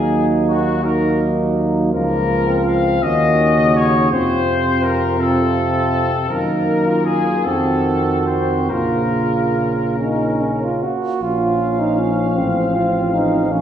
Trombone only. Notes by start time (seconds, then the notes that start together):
Already playing: F#3
0.84 F#3
1.93 F3
3.02 D#3
3.57 C#3
4.11 C3
5.19 C3
6.30 D#3
7.45 D#3
8.70 C#3
11.22 F3
13.51 F3